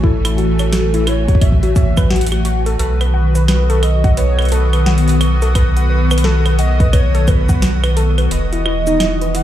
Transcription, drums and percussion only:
0.04 kick
0.25 closed hi-hat, claves
0.38 closed hi-hat
0.59 closed hi-hat, claves, shaker
0.73 snare, closed hi-hat
0.94 closed hi-hat
1.07 closed hi-hat, claves
1.28 kick, closed hi-hat
1.35 kick
1.41 kick, closed hi-hat, claves
1.52 kick
1.63 closed hi-hat
1.76 kick, closed hi-hat, shaker
1.97 kick, closed hi-hat, claves, shaker
2.10 snare, closed hi-hat
2.16 closed hi-hat
2.21 closed hi-hat
2.27 closed hi-hat
2.32 closed hi-hat, claves
2.45 closed hi-hat
2.66 closed hi-hat
2.79 closed hi-hat
3.01 closed hi-hat, claves
3.35 closed hi-hat, shaker
3.48 snare, closed hi-hat, claves
3.70 closed hi-hat
3.83 closed hi-hat, claves
4.04 kick, closed hi-hat
4.17 closed hi-hat
4.39 closed hi-hat, claves
4.42 closed hi-hat
4.45 closed hi-hat
4.49 closed hi-hat
4.52 closed hi-hat
4.73 closed hi-hat, claves
4.86 snare, closed hi-hat
4.98 closed hi-hat
5.08 closed hi-hat
5.09 closed hi-hat
5.21 closed hi-hat, claves
5.42 closed hi-hat, shaker
5.55 kick, closed hi-hat, claves
5.77 closed hi-hat
6.11 closed hi-hat, claves, shaker
6.18 closed hi-hat
6.24 snare
6.46 closed hi-hat, claves
6.59 closed hi-hat
6.80 kick, closed hi-hat
6.93 kick, closed hi-hat, claves
7.15 closed hi-hat
7.28 kick, closed hi-hat, claves, shaker
7.49 kick, closed hi-hat, shaker
7.62 snare, closed hi-hat
7.84 closed hi-hat, claves
7.97 closed hi-hat
8.18 closed hi-hat, claves
8.31 closed hi-hat
8.53 closed hi-hat
8.66 claves
8.87 closed hi-hat, shaker
9.00 snare, closed hi-hat, claves
9.21 closed hi-hat
9.35 closed hi-hat

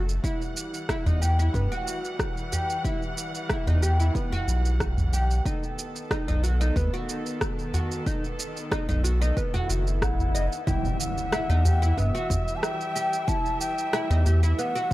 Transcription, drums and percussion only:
0.09 shaker
0.24 kick, shaker
0.42 shaker
0.57 shaker
0.74 shaker
0.89 kick, cross-stick, shaker
1.06 udu, shaker
1.22 shaker
1.40 shaker
1.54 kick, shaker
1.72 shaker
1.88 shaker
2.05 shaker
2.19 kick, cross-stick, shaker
2.37 shaker
2.53 udu, shaker
2.70 shaker
2.85 kick, shaker
3.02 shaker
3.18 shaker
3.35 shaker
3.50 kick, cross-stick, shaker
3.67 udu, shaker
3.83 shaker
4.00 shaker
4.15 kick, shaker
4.32 udu, shaker
4.48 shaker
4.65 shaker
4.80 kick, cross-stick, shaker
4.97 udu, shaker
5.13 shaker
5.31 shaker
5.46 kick, shaker
5.63 shaker
5.79 shaker
5.96 shaker
6.11 kick, cross-stick, shaker
6.28 udu, shaker
6.44 shaker
6.61 shaker
6.76 kick, shaker
6.94 shaker
7.09 shaker
7.26 shaker
7.41 kick, cross-stick, shaker
7.59 shaker
7.74 udu, shaker
7.92 shaker
8.06 kick, shaker
8.24 shaker
8.40 shaker
8.57 shaker
8.72 kick, cross-stick, shaker
8.89 udu, shaker
9.05 shaker
9.22 shaker
9.37 kick, shaker
9.55 udu, shaker
9.70 shaker
9.87 shaker
10.02 kick, cross-stick, shaker
10.18 udu, shaker
10.35 shaker
10.52 shaker
10.67 kick, shaker
10.85 shaker
11.00 shaker
11.18 shaker
11.33 cross-stick, shaker
11.50 shaker
11.66 udu, shaker
11.83 shaker
11.98 kick, shaker
12.15 shaker
12.30 kick, udu, shaker
12.48 shaker
12.63 cross-stick, shaker
12.81 shaker
12.96 shaker
13.13 shaker
13.28 kick, shaker
13.46 shaker
13.61 shaker
13.78 shaker
13.93 cross-stick, shaker
14.11 shaker
14.26 udu, shaker
14.44 shaker
14.59 shaker
14.76 shaker

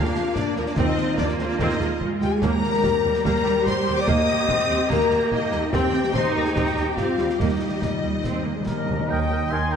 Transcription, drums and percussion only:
0.05 snare
0.15 snare
0.36 concert bass drum, snare
0.56 snare
0.66 snare
0.76 concert bass drum, snare
0.97 snare
1.18 concert bass drum, snare
1.29 snare
1.39 snare
1.59 concert bass drum, snare
1.70 snare
1.80 snare
2.01 concert bass drum
2.21 snare
2.42 concert bass drum, snare, crash
2.63 snare
2.74 snare
2.84 concert bass drum, snare
3.15 snare
3.25 concert bass drum, snare
3.36 snare
3.46 snare
3.66 concert bass drum, snare
3.87 snare
3.97 snare
4.07 concert bass drum, snare
4.28 snare
4.48 concert bass drum, snare
4.59 snare
4.70 snare
4.90 concert bass drum, snare
5.00 snare
5.10 snare
5.31 concert bass drum
5.52 snare
5.73 concert bass drum, snare
5.93 snare
6.03 snare
6.14 concert bass drum, snare
6.45 snare
6.56 concert bass drum, snare
6.66 snare
6.76 snare
6.97 concert bass drum, snare
7.18 snare
7.29 snare
7.40 concert bass drum, snare
7.82 concert bass drum, snare
8.24 concert bass drum, snare
8.66 concert bass drum, snare

